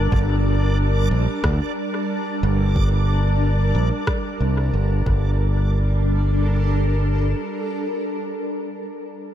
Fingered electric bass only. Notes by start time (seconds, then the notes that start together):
0.12 G1
1.11 A#1
1.44 D2
2.43 G1
3.75 A#1
4.40 C2
4.73 G1
5.06 G1